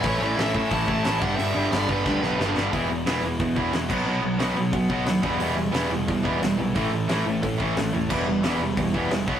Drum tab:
CC |--------|--------|-------x|--------|
HH |o-o-o-o-|o-o-----|o-o-o-o-|--o-o-o-|
SD |--o---o-|--o-oooo|--o---o-|--o---o-|
BD |o--ooo-o|---oo---|o---oo-o|----oo-o|

CC |--------|--------|x-------|
HH |o-o-o-o-|o-o-o-o-|--o-o-o-|
SD |--o---o-|--o---o-|--o---o-|
BD |----oo--|o---oo--|o---oo-o|